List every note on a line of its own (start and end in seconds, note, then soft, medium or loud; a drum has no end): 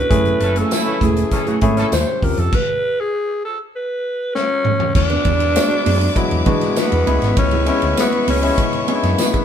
0.00 0.13 D3 medium
0.00 0.10 A3 medium
0.00 0.13 B3 medium
0.00 0.10 C#4 medium
0.00 0.11 D4 medium
0.00 0.13 D4 medium
0.00 0.11 E4 medium
0.00 0.13 F#4 medium
0.00 0.11 A4 medium
0.00 0.59 B4 loud
0.00 0.11 C#5 medium
0.10 0.32 F#1 loud
0.10 1.90 F#3 medium
0.10 0.79 A3 medium
0.10 1.90 A3 medium
0.10 0.38 A3 medium
0.10 0.79 C#4 medium
0.10 1.90 E4 medium
0.10 0.79 E4 medium
0.10 0.39 E4 loud
0.10 0.79 G#4 medium
0.10 0.39 G#4 loud
0.10 1.90 G#5 medium
0.10 kick loud
0.10 closed hi-hat medium
0.25 closed hi-hat soft
0.40 0.62 F#1 loud
0.40 0.53 E3 medium
0.40 0.53 C#4 medium
0.40 0.53 A4 loud
0.40 muted clean electric guitar stroke soft
0.40 closed hi-hat medium
0.56 0.68 C#3 medium
0.56 0.69 A3 medium
0.56 0.72 A3 soft
0.56 0.72 E4 medium
0.56 0.69 F#4 medium
0.56 0.72 G#4 medium
0.56 1.05 A4 medium
0.56 closed hi-hat medium
0.71 0.96 C#3 loud
0.71 0.96 A3 loud
0.71 0.96 E4 loud
0.71 snare loud
0.71 closed hi-hat medium
0.71 tambourine medium
0.86 1.54 A3 medium
0.86 1.55 C#4 medium
0.86 1.55 E4 medium
0.86 1.55 B4 medium
0.86 muted clean electric guitar stroke medium
1.01 1.22 E1 loud
1.01 1.21 A3 medium
1.01 1.16 E4 medium
1.01 1.15 G#4 medium
1.01 1.63 G#4 medium
1.01 kick loud
1.01 closed hi-hat medium
1.16 muted clean electric guitar stroke soft
1.16 closed hi-hat medium
1.31 1.44 E3 medium
1.31 1.44 C#4 medium
1.31 1.44 A4 loud
1.31 muted clean electric guitar stroke soft
1.31 kick medium
1.31 closed hi-hat medium
1.47 1.59 C#3 medium
1.47 1.59 A3 medium
1.47 1.60 A3 medium
1.47 1.61 E4 medium
1.47 1.59 F#4 medium
1.47 1.62 G#4 medium
1.47 closed hi-hat soft
1.61 1.83 G#1 medium
1.61 1.82 A3 medium
1.61 1.92 A3 loud
1.61 1.92 C#4 medium
1.61 1.77 E4 medium
1.61 1.93 E4 medium
1.61 1.76 G#4 medium
1.61 1.93 G#4 loud
1.61 kick loud
1.61 closed hi-hat medium
1.77 1.86 E3 medium
1.77 1.86 C#4 medium
1.77 1.87 A4 medium
1.77 muted clean electric guitar stroke soft
1.77 snare soft
1.77 closed hi-hat medium
1.92 2.03 D#2 loud
1.92 2.52 C#3 medium
1.92 2.52 D#4 medium
1.92 2.52 G4 medium
1.92 2.25 C5 loud
1.92 snare loud
1.92 closed hi-hat medium
1.92 tambourine medium
2.07 2.22 C#4 medium
2.07 2.22 G4 medium
2.07 2.23 C#5 medium
2.22 2.33 D#2 medium
2.22 2.53 C4 medium
2.22 2.53 C#4 medium
2.22 2.53 F4 medium
2.22 2.53 G4 medium
2.22 2.41 A#4 medium
2.22 muted clean electric guitar stroke soft
2.22 kick loud
2.22 open hi-hat medium
2.37 2.48 F2 loud
2.37 2.56 A4 loud
2.37 muted clean electric guitar stroke medium
2.37 closed hi-hat soft
2.53 3.02 B4 loud
2.53 kick loud
2.53 crash loud
3.00 3.44 G#4 loud
3.45 3.58 A4 medium
3.76 4.31 B4 medium
4.35 4.91 C#4 loud
4.35 snare medium
4.65 mid tom medium
4.80 floor tom medium
4.95 5.16 E2 loud
4.95 6.19 D4 loud
4.95 7.05 G#4 medium
4.95 7.05 E5 medium
4.95 9.45 B5 medium
4.95 7.05 D6 loud
4.95 muted clean electric guitar stroke soft
4.95 kick loud
4.95 crash loud
5.10 5.24 B3 medium
5.10 5.25 D4 medium
5.10 5.26 B4 medium
5.10 ride soft
5.25 5.57 E2 loud
5.25 5.41 B3 medium
5.25 5.40 D4 medium
5.25 5.39 G#4 medium
5.25 kick medium
5.25 ride medium
5.40 muted clean electric guitar stroke soft
5.40 ride soft
5.55 6.10 G#3 medium
5.55 6.10 B3 medium
5.55 6.10 D4 medium
5.55 6.11 F#4 medium
5.55 muted clean electric guitar stroke soft
5.55 snare loud
5.55 ride medium
5.55 tambourine loud
5.70 muted clean electric guitar stroke medium
5.70 ride soft
5.86 6.07 F#2 medium
5.86 6.06 B3 loud
5.86 6.01 D4 medium
5.86 6.00 G#4 medium
5.86 open hi-hat medium
5.86 ride medium
6.01 muted clean electric guitar stroke soft
6.01 ride soft
6.16 6.50 F#3 loud
6.16 6.43 G#3 medium
6.16 6.43 B3 medium
6.16 6.44 D4 medium
6.16 6.44 E4 loud
6.16 kick loud
6.16 hi-hat pedal medium
6.16 ride medium
6.31 6.42 E2 medium
6.31 muted clean electric guitar stroke soft
6.31 ride soft
6.46 6.67 E3 medium
6.46 7.05 G#3 medium
6.46 6.80 G#3 loud
6.46 7.05 B3 medium
6.46 6.67 B3 medium
6.46 7.07 D4 medium
6.46 6.61 D4 medium
6.46 7.07 F#4 medium
6.46 6.61 B4 loud
6.46 kick loud
6.46 ride medium
6.61 muted clean electric guitar stroke soft
6.61 snare soft
6.61 ride soft
6.76 7.38 B3 loud
6.76 snare loud
6.76 ride medium
6.76 tambourine medium
6.92 7.03 E2 medium
6.92 muted clean electric guitar stroke soft
6.92 ride soft
7.06 7.18 C#2 medium
7.06 7.61 G#3 medium
7.06 7.62 B3 medium
7.06 7.27 B3 medium
7.06 7.62 C#4 medium
7.06 7.62 E4 medium
7.06 7.22 E4 loud
7.06 9.45 G#4 medium
7.06 7.21 G#4 loud
7.06 9.45 E5 medium
7.06 9.45 C#6 loud
7.06 ride medium
7.22 7.32 G#1 medium
7.22 muted clean electric guitar stroke medium
7.22 snare soft
7.22 ride soft
7.37 7.69 C#2 loud
7.37 7.66 C#4 loud
7.37 muted clean electric guitar stroke soft
7.37 kick loud
7.37 ride medium
7.51 7.66 B3 medium
7.51 7.67 E4 medium
7.51 7.68 G#4 medium
7.51 ride soft
7.66 8.35 G#3 medium
7.66 7.83 B3 medium
7.66 8.36 B3 medium
7.66 8.36 C#4 medium
7.66 7.96 C#4 loud
7.66 8.36 E4 loud
7.66 7.82 E4 medium
7.66 7.81 G#4 medium
7.66 ride medium
7.82 7.93 D2 loud
7.82 muted clean electric guitar stroke soft
7.82 ride soft
7.97 8.27 B3 loud
7.97 muted clean electric guitar stroke soft
7.97 snare loud
7.97 ride medium
7.97 tambourine medium
8.12 muted clean electric guitar stroke soft
8.12 ride soft
8.27 8.49 C#2 loud
8.27 8.48 B3 medium
8.27 8.86 C#4 loud
8.27 8.43 E4 medium
8.27 8.42 B4 medium
8.27 open hi-hat medium
8.27 ride medium
8.42 8.84 G#3 medium
8.42 8.84 B3 medium
8.42 8.84 C#4 medium
8.42 8.84 E4 medium
8.42 muted clean electric guitar stroke soft
8.42 ride soft
8.58 8.79 C#3 medium
8.58 kick loud
8.58 hi-hat pedal medium
8.58 ride medium
8.73 muted clean electric guitar stroke soft
8.73 ride soft
8.88 9.45 G#3 medium
8.88 9.45 B3 medium
8.88 9.08 B3 medium
8.88 9.45 C#4 medium
8.88 8.95 D4 medium
8.88 9.03 E4 medium
8.88 9.02 G#4 loud
8.88 ride medium
8.95 9.45 E4 medium
9.03 9.14 F#2 medium
9.03 muted clean electric guitar stroke soft
9.03 snare soft
9.03 ride soft
9.13 9.21 A#3 medium
9.18 9.45 B3 medium
9.18 muted clean electric guitar stroke soft
9.18 snare loud
9.18 ride medium
9.18 tambourine medium
9.33 9.45 B3 medium
9.33 9.45 E4 medium
9.33 9.45 G#4 medium
9.33 kick medium
9.33 ride soft